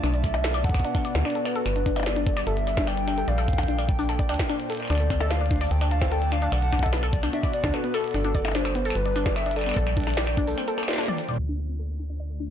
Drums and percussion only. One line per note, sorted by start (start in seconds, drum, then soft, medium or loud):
0.04 finger snap medium
0.04 closed hi-hat medium
0.14 closed hi-hat soft
0.24 finger snap medium
0.24 kick medium
0.24 closed hi-hat medium
0.34 closed hi-hat soft
0.34 percussion blips medium
0.44 snare loud
0.44 closed hi-hat medium
0.54 finger snap medium
0.54 closed hi-hat soft
0.64 kick loud
0.64 closed hi-hat loud
0.69 kick loud
0.74 finger snap medium
0.74 kick medium
0.74 open hi-hat medium
0.80 kick medium
0.85 closed hi-hat medium
0.95 finger snap medium
0.95 kick loud
0.95 closed hi-hat soft
1.05 closed hi-hat loud
1.15 snare loud
1.15 closed hi-hat soft
1.25 finger snap medium
1.30 closed hi-hat medium
1.35 closed hi-hat soft
1.45 finger snap medium
1.45 closed hi-hat loud
1.56 closed hi-hat soft
1.66 finger snap soft
1.66 closed hi-hat medium
1.76 closed hi-hat soft
1.86 kick medium
1.86 closed hi-hat medium
1.96 finger snap medium
1.96 closed hi-hat soft
1.96 percussion blips soft
2.00 percussion blips medium
2.03 snare loud
2.03 closed hi-hat medium
2.03 percussion blips medium
2.16 closed hi-hat soft
2.27 kick loud
2.27 closed hi-hat loud
2.37 finger snap medium
2.37 open hi-hat medium
2.47 closed hi-hat medium
2.57 closed hi-hat soft
2.67 finger snap medium
2.67 closed hi-hat loud
2.77 kick loud
2.77 snare loud
2.77 closed hi-hat soft
2.87 finger snap medium
2.87 closed hi-hat medium
2.97 closed hi-hat soft
3.08 finger snap medium
3.08 closed hi-hat medium
3.18 closed hi-hat soft
3.28 closed hi-hat medium
3.38 finger snap soft
3.38 closed hi-hat soft
3.48 kick medium
3.48 closed hi-hat medium
3.53 kick medium
3.58 finger snap medium
3.58 kick medium
3.58 closed hi-hat soft
3.58 percussion blips medium
3.63 kick soft
3.68 closed hi-hat medium
3.79 finger snap medium
3.79 closed hi-hat soft
3.89 kick loud
3.99 open hi-hat medium
4.09 finger snap medium
4.09 closed hi-hat medium
4.19 kick loud
4.19 closed hi-hat soft
4.29 finger snap medium
4.34 closed hi-hat medium
4.39 kick loud
4.39 snare loud
4.39 closed hi-hat soft
4.50 finger snap medium
4.60 closed hi-hat soft
4.70 closed hi-hat medium
4.72 closed hi-hat medium
4.75 closed hi-hat medium
4.77 finger snap soft
4.77 closed hi-hat soft
4.83 finger snap soft
4.85 finger snap soft
4.88 finger snap soft
4.90 finger snap soft
4.90 closed hi-hat medium
4.93 finger snap soft
4.95 finger snap soft
4.98 finger snap soft
4.98 closed hi-hat soft
5.10 finger snap medium
5.10 kick medium
5.10 closed hi-hat medium
5.21 closed hi-hat soft
5.21 percussion blips medium
5.31 finger snap soft
5.31 snare loud
5.31 closed hi-hat medium
5.41 closed hi-hat soft
5.46 closed hi-hat soft
5.51 kick loud
5.51 closed hi-hat medium
5.56 closed hi-hat soft
5.61 finger snap medium
5.61 open hi-hat medium
5.71 closed hi-hat medium
5.81 finger snap medium
5.81 closed hi-hat soft
5.91 closed hi-hat medium
6.02 finger snap medium
6.02 kick loud
6.02 snare loud
6.02 closed hi-hat soft
6.12 closed hi-hat medium
6.22 closed hi-hat soft
6.32 finger snap medium
6.32 closed hi-hat medium
6.42 closed hi-hat soft
6.52 finger snap medium
6.52 closed hi-hat medium
6.62 closed hi-hat soft
6.73 finger snap medium
6.73 kick soft
6.73 closed hi-hat medium
6.79 kick medium
6.79 closed hi-hat soft
6.79 percussion blips medium
6.86 kick medium
6.86 closed hi-hat soft
6.93 snare loud
6.93 closed hi-hat medium
6.98 closed hi-hat soft
7.03 finger snap medium
7.03 closed hi-hat soft
7.13 kick loud
7.13 closed hi-hat medium
7.23 finger snap medium
7.23 open hi-hat medium
7.33 closed hi-hat medium
7.43 finger snap medium
7.43 kick loud
7.43 closed hi-hat soft
7.54 closed hi-hat medium
7.64 kick loud
7.64 snare loud
7.64 closed hi-hat soft
7.74 finger snap medium
7.74 closed hi-hat medium
7.84 closed hi-hat soft
7.94 finger snap medium
7.94 closed hi-hat medium
8.04 closed hi-hat soft
8.08 closed hi-hat soft
8.11 finger snap medium
8.11 closed hi-hat soft
8.14 closed hi-hat medium
8.18 closed hi-hat soft
8.21 closed hi-hat soft
8.25 closed hi-hat soft
8.35 kick medium
8.35 closed hi-hat medium
8.45 finger snap medium
8.45 closed hi-hat soft
8.45 percussion blips medium
8.48 closed hi-hat soft
8.48 percussion blips medium
8.52 snare loud
8.52 closed hi-hat medium
8.52 percussion blips medium
8.58 closed hi-hat soft
8.65 finger snap medium
8.65 closed hi-hat soft
8.75 closed hi-hat medium
8.85 open hi-hat medium
8.90 finger snap medium
8.95 closed hi-hat medium
9.06 closed hi-hat soft
9.16 finger snap medium
9.16 closed hi-hat medium
9.26 kick loud
9.26 snare loud
9.26 closed hi-hat soft
9.36 finger snap medium
9.36 closed hi-hat medium
9.46 closed hi-hat soft
9.51 closed hi-hat medium
9.56 finger snap soft
9.59 finger snap soft
9.61 finger snap soft
9.64 finger snap soft
9.66 finger snap soft
9.66 closed hi-hat soft
9.69 finger snap soft
9.72 finger snap soft
9.72 closed hi-hat soft
9.74 finger snap soft
9.74 kick medium
9.74 closed hi-hat medium
9.80 closed hi-hat soft
9.87 finger snap medium
9.87 closed hi-hat soft
9.97 kick medium
9.97 closed hi-hat soft
10.00 closed hi-hat medium
10.04 finger snap medium
10.04 closed hi-hat medium
10.07 closed hi-hat medium
10.10 closed hi-hat medium
10.14 snare loud
10.14 closed hi-hat medium
10.17 closed hi-hat medium
10.27 finger snap medium
10.27 closed hi-hat soft
10.37 kick loud
10.37 closed hi-hat medium
10.47 open hi-hat medium
10.58 finger snap medium
10.58 closed hi-hat medium
10.68 closed hi-hat soft
10.78 finger snap medium
10.78 closed hi-hat medium
10.83 finger snap medium
10.88 finger snap medium
10.88 snare loud
10.91 finger snap soft
10.91 snare loud
10.93 snare medium
10.96 snare medium
10.98 snare medium
10.98 closed hi-hat medium
11.01 snare soft
11.03 snare soft
11.06 snare soft
11.06 closed hi-hat soft
11.06 high tom medium
11.18 closed hi-hat medium
11.29 closed hi-hat soft
11.29 mid tom soft
11.31 mid tom soft
11.34 mid tom medium
11.36 closed hi-hat medium
11.36 mid tom medium
11.59 closed hi-hat medium
11.69 closed hi-hat soft
11.79 closed hi-hat medium
11.89 closed hi-hat soft
12.00 closed hi-hat medium
12.10 closed hi-hat soft
12.20 closed hi-hat medium
12.30 closed hi-hat soft
12.40 closed hi-hat medium